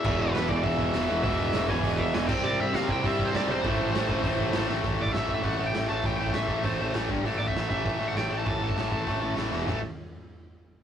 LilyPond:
<<
  \new Staff \with { instrumentName = "Overdriven electric guitar" } { \time 4/4 \key a \minor \tempo 4 = 199 e''8 b'4 d''8 e''2 | e''4. gis''4 e''8 gis''8 g''8 | d''8 e''8 f''8 g''8 e''8. c''16 d''8 c''8~ | c''2.~ c''8 r8 |
r8 d''16 e''8. e''8 fis''8. g''8. a''8 | g''8 g''8 e''4 c''4 r4 | r8 d''16 e''8. e''4~ e''16 fis''16 g''8. a''16 | a''2. r4 |
r1 | }
  \new Staff \with { instrumentName = "Distorted electric guitar" } { \clef bass \time 4/4 \key a \minor <e, b, e>4 <e, b, e>8 <e, b, e>8 <e, b, e>4 <e, b, e>8 <e, b, e>8 | <e, b, e>4 <e, b, e>8 <e, b, e>8 <e, b, e>4 <e, b, e>8 <c g c'>8 | <c g c'>4 <c g c'>8 <c g c'>8 <c g c'>4 <c g c'>8 <c g c'>8 | <a, e a>4 <a, e a>8 <a, e a>8 <a, e a>4 <a, e a>8 <a, e a>8 |
<a, e a>8 <a, e a>8 <a, e a>8 <a, e a>8 <a, e a>8 <a, e a>8 <a, e a>8 <a, e a>8 | <a, e a>8 <a, e a>8 <a, e a>8 <a, e a>8 <a, e a>8 <a, e a>8 <a, e a>8 <g, d g>8 | <a, e a>8 <a, e a>8 <a, e a>8 <a, e a>8 <a, e a>8 <a, e a>8 <a, e a>8 <a, e a>8 | <a, e a>8 <a, e a>8 <a, e a>8 <a, e a>8 <a, e a>8 <a, e a>8 <a, e a>8 <e, b, e>8 |
<a, e a>8 r2. r8 | }
  \new Staff \with { instrumentName = "Overdriven electric guitar" } { \clef bass \time 4/4 \key a \minor <e, b, e>4 <e, b, e>8 <e, b, e>8 <e, b, e>4 <e, b, e>8 <e, b, e>8 | <e, b, e>4 <e, b, e>8 <e, b, e>8 <e, b, e>4 <e, b, e>8 <c g c'>8 | <c g c'>4 <c g c'>8 <c g c'>8 <c g c'>4 <c g c'>8 <c g c'>8 | <a, e a>4 <a, e a>8 <a, e a>8 <a, e a>4 <a, e a>8 <a, e a>8 |
<a, e a>8 <a, e a>8 <a, e a>8 <a, e a>8 <a, e a>8 <a, e a>8 <a, e a>8 <a, e a>8 | <a, e a>8 <a, e a>8 <a, e a>8 <a, e a>8 <a, e a>8 <a, e a>8 <a, e a>8 <g, d g>8 | <a, e a>8 <a, e a>8 <a, e a>8 <a, e a>8 <a, e a>8 <a, e a>8 <a, e a>8 <a, e a>8 | <a, e a>8 <a, e a>8 <a, e a>8 <a, e a>8 <a, e a>8 <a, e a>8 <a, e a>8 <e, b, e>8 |
<a, e a>8 r2. r8 | }
  \new Staff \with { instrumentName = "Distorted electric guitar" } { \clef bass \time 4/4 \key a \minor <e, b, e>2~ <e, b, e>8 <e, b, e>8 <e, b, e>4 | <e, b, e>2~ <e, b, e>8 <e, b, e>8 <e, b, e>8 <c g c'>8~ | <c g c'>2 <c g c'>8 <c g c'>4 r8 | <a, e a>2~ <a, e a>8 <a, e a>8 <a, e a>4 |
r1 | r1 | r1 | r1 |
r1 | }
  \new Staff \with { instrumentName = "Picked electric bass" } { \clef bass \time 4/4 \key a \minor e,,8 e,,8 e,,8 e,,8 e,,4 e,,8 e,,8 | e,,8 e,,8 e,,8 e,,8 e,,4 e,,8 c,8 | c,8 c,8 c,8 c,8 c,4 c,8 b,,8 | a,,8 a,,8 a,,8 a,,8 a,,4 a,,8 a,,8 |
a,,8 a,,8 a,,8 a,,8 a,,8 a,,8 a,,8 a,,8 | a,,4 a,,8 a,,8 a,,8 a,,8 a,,8 g,,8 | a,,8 a,,8 a,,8 a,,8 a,,8 a,,8 a,,8 a,,8 | a,,4 a,,8 a,,8 a,,8 a,,8 a,,8 e,,8 |
a,,8 r2. r8 | }
  \new DrumStaff \with { instrumentName = "Drums" } \drummode { \time 4/4 <cymc bd>4 <hho sn>8 bd8 <hho bd>8 bd8 <hho sn>4 | <hho bd>4 <hho sn>8 bd8 <hho bd>8 bd8 <hho sn>8 <cymc bd>8 | r4 <hho sn>8 bd8 <hho bd>8 bd8 <hho sn>4 | <hho bd>4 <hho sn>8 bd8 <hho bd>8 bd8 <hho sn>8 sn8 |
<hho bd>8. bd16 <hho sn>8 bd8 <hho bd>4 <hho sn>4 | <hho bd>8. bd16 <hho sn>8 bd8 <hho bd>4 <hho sn>8 bd8 | hho8. bd16 <hho sn>8 bd8 <hho bd>4 <hho sn>4 | <hho bd>8. bd16 <hho sn>8 bd8 <hho bd>4 <hho sn>8 sn8 |
<sn tomfh>4 r4 r4 r4 | }
>>